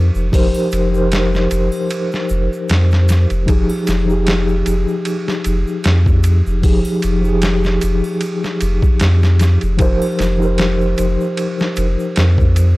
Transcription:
Already playing: sub bass F2, tine electric piano F3 D#4 G4 A#4 C5
0.15 sub bass F1, shaker
0.31 sub bass F1, tine electric piano F3 D#4 G4 A#4 C5, kick, open hi-hat, shaker
0.54 triangle, shaker
0.72 sub bass F1, ride, shaker
0.90 tine electric piano F3 D#4 G4
0.94 tine electric piano A#4 C5, shaker
1.12 snare, ride, shaker
1.34 snare, shaker
1.51 sub bass F1, ride, shaker
1.72 triangle, shaker
1.90 ride, shaker
2.12 snare, shaker
2.29 sub bass F1, shaker
2.53 shaker
2.69 sub bass F2, snare, ride, shaker
2.91 snare, shaker
3.08 snare, ride, shaker
3.30 sub bass F1, ride, shaker
3.46 sub bass F1, tine electric piano F3 D#4 G4 G#4, kick, ride, shaker
3.70 triangle, shaker
3.87 sub bass F1, snare, ride, shaker
4.06 tine electric piano F3 D#4, shaker
4.11 tine electric piano G4 G#4
4.27 snare, ride, shaker
4.49 shaker
4.66 sub bass F1, ride, shaker
4.88 shaker
5.05 ride, shaker
5.28 snare, shaker
5.44 sub bass F1, ride, shaker
5.67 shaker
5.84 sub bass F2, snare, ride, shaker
6.06 kick, shaker
6.24 ride, shaker
6.46 sub bass F1, shaker
6.62 sub bass F1, tine electric piano F3 D#4 G4 G#4, kick, open hi-hat, shaker
6.85 triangle, shaker
7.02 sub bass F1, ride, shaker
7.21 tine electric piano F3 D#4, shaker
7.26 tine electric piano G4 G#4
7.42 snare, ride, shaker
7.64 snare, shaker
7.81 sub bass F1, ride, shaker
8.04 triangle, shaker
8.21 ride, shaker
8.44 snare, shaker
8.61 sub bass F1, ride, shaker
8.82 kick, shaker
9.00 sub bass F2, snare, ride, shaker
9.23 snare, shaker
9.39 snare, ride, shaker
9.61 sub bass F1, ride, shaker
9.77 sub bass F1, tine electric piano F3 D#4 G4 A#4, kick, ride, shaker
9.82 tine electric piano C5
10.02 triangle, shaker
10.19 sub bass F1, snare, ride, shaker
10.38 tine electric piano F3 D#4 G4, shaker
10.44 tine electric piano A#4 C5
10.58 snare, ride, shaker
10.81 shaker
10.98 sub bass F1, ride, shaker
11.20 shaker
11.37 ride, shaker
11.59 snare, shaker
11.76 sub bass F1, ride, shaker
11.99 shaker
12.16 sub bass F2, snare, ride, shaker
12.38 kick, shaker
12.56 ride, shaker

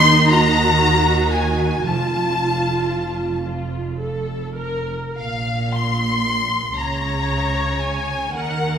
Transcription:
Already playing: double bass section D#2, cello section D#3, viola section D#4, violin section C6
0.30 viola section F#4, violin section A#5
1.32 violin section G#5
1.86 double bass section F1, cello section F2, viola section F4, violin section A5
3.45 viola section F4
3.99 viola section A4
4.57 viola section A#4
5.17 double bass section A#1, cello section A#2, violin section F5
5.73 violin section C6
6.76 double bass section C#2, cello section C#3, viola section C#5, violin section A#5
7.80 violin section G#5
8.35 double bass section D#2, cello section D#3, viola section A#4, violin section F#5

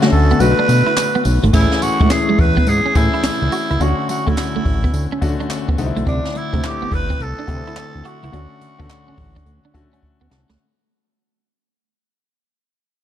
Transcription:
Already playing: grand piano D3 A3 C#4 F#4
0.02 grand piano D3 A3 C#4 F#4, clean electric guitar A3, snare
0.12 analog synth bass D2, tenor saxophone A4, muted clean electric guitar stroke, open hi-hat
0.30 clean electric guitar B3, closed hi-hat
0.40 analog synth bass B1, grand piano D3 A3 B3 F#4, tenor saxophone B4, closed hi-hat, tambourine
0.59 clean electric guitar D4
0.68 analog synth bass B2, muted clean electric guitar stroke, closed hi-hat, tambourine
0.87 clean electric guitar E4, closed hi-hat
0.97 snare, clap, closed hi-hat, tambourine
1.15 clean electric guitar B3
1.25 analog synth bass B1, muted clean electric guitar stroke, open hi-hat, tambourine
1.43 analog synth bass G#1, clean electric guitar A3, closed hi-hat
1.53 analog synth bass A1, grand piano E3 A3 C#4 G#4, clean electric guitar A3, tenor saxophone E4, kick, crash, tambourine
1.72 snare
1.82 analog synth bass A2, tenor saxophone F#4, muted clean electric guitar stroke, closed hi-hat, tambourine
2.00 analog synth bass A2, grand piano E3 A3 C#4 E4, clean electric guitar G#3, kick, closed hi-hat
2.10 tenor saxophone G#4, snare, clap, closed hi-hat, tambourine
2.29 analog synth bass E2, clean electric guitar G#3
2.38 analog synth bass E2, tenor saxophone B4, muted clean electric guitar stroke, kick, open hi-hat
2.57 clean electric guitar B3, kick, closed hi-hat
2.67 analog synth bass G#2, tenor saxophone G#4, closed hi-hat, tambourine
2.86 clean electric guitar C#4
2.95 analog synth bass A2, grand piano E3 A3 C#4 G#4, tenor saxophone E4, muted clean electric guitar stroke, kick, closed hi-hat, tambourine
3.14 clean electric guitar E4, closed hi-hat
3.23 analog synth bass C#2, muted clean electric guitar stroke, snare, clap, closed hi-hat, tambourine
3.42 analog synth bass C#2
3.52 clean electric guitar F#4, closed hi-hat, tambourine
3.70 analog synth bass C#2, clean electric guitar E4, closed hi-hat
3.80 analog synth bass D2, grand piano D3 A3 C#4 F#4, clean electric guitar D4, tenor saxophone F#4, closed hi-hat, tambourine
4.09 analog synth bass D3, tenor saxophone F#4, muted clean electric guitar stroke, closed hi-hat, tambourine
4.26 grand piano D3 A3 C#4 F#4, analog synth bass D3, clean electric guitar A3, tenor saxophone E4, kick, closed hi-hat
4.37 snare, clap, closed hi-hat, tambourine
4.55 analog synth bass A1, clean electric guitar A3
4.65 analog synth bass A1, muted clean electric guitar stroke, kick, open hi-hat
4.84 clean electric guitar B3, kick, closed hi-hat
4.93 analog synth bass D2, closed hi-hat, tambourine
5.12 clean electric guitar C#4
5.21 grand piano D3 A3 C#4 F#4, analog synth bass D3, muted clean electric guitar stroke, kick, closed hi-hat, tambourine
5.40 clean electric guitar D4, closed hi-hat
5.50 snare, clap, closed hi-hat, tambourine
5.68 analog synth bass D2, clean electric guitar B3, kick
5.78 analog synth bass C2, grand piano D3 A3 C4 D#4, muted clean electric guitar stroke, closed hi-hat, tambourine
5.86 grand piano E4
5.96 analog synth bass B1, clean electric guitar A3, closed hi-hat
6.07 analog synth bass C2, clean electric guitar C4, tenor saxophone D4, kick, closed hi-hat
6.25 snare
6.35 analog synth bass C3, tenor saxophone E4, muted clean electric guitar stroke, closed hi-hat
6.53 analog synth bass C3, grand piano D3 A3 C4 E4, clean electric guitar A3, kick, closed hi-hat
6.63 tenor saxophone G4, snare, clap, closed hi-hat
6.82 analog synth bass G1, clean electric guitar B3
6.91 analog synth bass G1, tenor saxophone B4, muted clean electric guitar stroke, kick, open hi-hat
7.10 clean electric guitar C4, kick, closed hi-hat
7.20 analog synth bass C2, tenor saxophone A4, closed hi-hat
7.39 clean electric guitar D4
7.47 analog synth bass C3, grand piano D3 A3 C4 E4, muted clean electric guitar stroke, kick, closed hi-hat
7.67 clean electric guitar E4, closed hi-hat
7.76 analog synth bass D2, muted clean electric guitar stroke, snare, clap, closed hi-hat
7.95 analog synth bass D2
8.05 clean electric guitar F#4, tenor saxophone F#4, closed hi-hat
8.23 analog synth bass C#2, clean electric guitar E4, closed hi-hat
8.32 analog synth bass D2, grand piano D3 A3 C#4 F#4, clean electric guitar D4, closed hi-hat
8.61 analog synth bass D3, muted clean electric guitar stroke, closed hi-hat
8.79 grand piano D3 A3 C#4 F#4, analog synth bass D3, clean electric guitar B3, kick, closed hi-hat
8.89 snare, clap, closed hi-hat
9.08 analog synth bass A1, clean electric guitar C#4
9.17 analog synth bass A1, muted clean electric guitar stroke, kick, open hi-hat
9.36 clean electric guitar D4, kick, closed hi-hat
9.46 analog synth bass D2, closed hi-hat
9.65 clean electric guitar D4
9.74 grand piano D3 A3 C#4 F#4, analog synth bass D3, muted clean electric guitar stroke, kick, closed hi-hat
9.93 clean electric guitar C#4, closed hi-hat
10.03 grand piano E5, kick
10.21 analog synth bass D2, clean electric guitar B3, grand piano F#5
10.30 analog synth bass C2, grand piano A5, muted clean electric guitar stroke, snare
10.50 analog synth bass C#2, clean electric guitar A3, snare

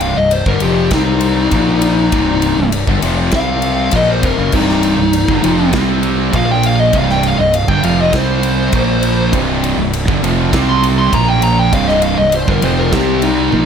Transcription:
Already playing: fingered electric bass C1, distorted electric guitar C2 G2 C3
0.01 lead electric guitar F5, ride
0.17 fingered electric bass C1, distorted electric guitar C2 G2, lead electric guitar D#5
0.31 lead electric guitar C5, ride
0.46 fingered electric bass G1, distorted electric guitar G2 D3, lead electric guitar A#4, kick
0.60 fingered electric bass F1, distorted electric guitar F2 C3 F3, lead electric guitar G4, ride
0.91 fingered electric bass C2, distorted electric guitar C3 G3 C4, lead electric guitar D#4, kick, snare, ride
1.21 ride
1.51 fingered electric bass A#1, distorted electric guitar A#2 F3 A#3, kick, ride
1.82 ride
2.12 fingered electric bass C1, distorted electric guitar C2 G2 C3, kick, ride
2.42 ride
2.57 fingered electric bass C1, distorted electric guitar C2 G2
2.72 ride
2.87 fingered electric bass G1, distorted electric guitar G2 D3, kick
3.02 fingered electric bass F1, distorted electric guitar F2 C3 F3, ride
3.31 fingered electric bass C2, distorted electric guitar C3 G3 C4, lead electric guitar F5, kick, snare, ride
3.62 ride
3.91 fingered electric bass A#1, distorted electric guitar A#2 F3 A#3, kick, ride
3.96 lead electric guitar D#5
4.11 lead electric guitar C5
4.23 fingered electric bass F1, distorted electric guitar F2 C3, lead electric guitar A#4, kick, ride
4.38 fingered electric bass F#1, distorted electric guitar F#2 C#3
4.52 fingered electric bass C1, distorted electric guitar C2 G2 C3, lead electric guitar D#4, kick, crash
4.69 snare
4.83 ride
4.97 fingered electric bass C1, distorted electric guitar C2 G2
5.13 ride
5.28 fingered electric bass G1, distorted electric guitar G2 D3, kick
5.42 fingered electric bass F1, distorted electric guitar F2 C3 F3, ride
5.73 fingered electric bass C2, distorted electric guitar C3 G3 C4, kick, snare, ride
6.03 ride
6.33 fingered electric bass A#1, distorted electric guitar A#2 F3 A#3, lead electric guitar F5, kick, ride
6.51 lead electric guitar G5
6.63 lead electric guitar F5, ride
6.80 lead electric guitar D#5
6.92 fingered electric bass C1, distorted electric guitar C2 G2 C3, lead electric guitar F5, kick, ride
7.09 lead electric guitar G5, snare
7.23 ride
7.28 lead electric guitar F5
7.37 fingered electric bass C1, distorted electric guitar C2 G2, lead electric guitar D#5
7.54 lead electric guitar F5, ride
7.67 fingered electric bass G1, distorted electric guitar G2 D3, lead electric guitar G5, kick
7.83 fingered electric bass F1, distorted electric guitar F2 C3 F3, lead electric guitar F5, ride
8.01 lead electric guitar D#5
8.12 fingered electric bass C2, distorted electric guitar C3 G3 C4, lead electric guitar C5, kick, snare, ride
8.43 ride
8.73 fingered electric bass A#1, distorted electric guitar A#2 F3 A#3, kick, ride
9.03 ride
9.33 fingered electric bass C1, distorted electric guitar C2 G2 C3, kick, ride
9.64 ride
9.77 fingered electric bass C1, distorted electric guitar C2 G2
9.93 ride
10.08 fingered electric bass G1, distorted electric guitar G2 D3, kick
10.21 fingered electric bass F1, distorted electric guitar F2 C3 F3, ride
10.52 fingered electric bass C2, distorted electric guitar C3 G3 C4, kick, snare, ride
10.69 lead electric guitar C6
10.84 ride
10.98 lead electric guitar C6
11.13 fingered electric bass A#1, distorted electric guitar A#2 F3 A#3, lead electric guitar A#5, kick, ride
11.28 lead electric guitar G5
11.42 lead electric guitar A#5, ride
11.59 lead electric guitar G5
11.73 fingered electric bass C1, distorted electric guitar C2 G2 C3, lead electric guitar F5, kick, ride
11.87 lead electric guitar D#5, snare
12.02 lead electric guitar F5, ride
12.17 fingered electric bass C1, distorted electric guitar C2 G2, lead electric guitar D#5
12.32 lead electric guitar C5, ride
12.48 fingered electric bass G1, distorted electric guitar G2 D3, lead electric guitar A#4, kick
12.62 fingered electric bass F1, distorted electric guitar F2 C3 F3, lead electric guitar C5, ride
12.79 lead electric guitar A#4
12.93 fingered electric bass C2, distorted electric guitar C3 G3 C4, lead electric guitar G4, kick, snare, ride
13.22 lead electric guitar D#4, ride
13.52 fingered electric bass A#1, distorted electric guitar A#2 F3 A#3, high tom

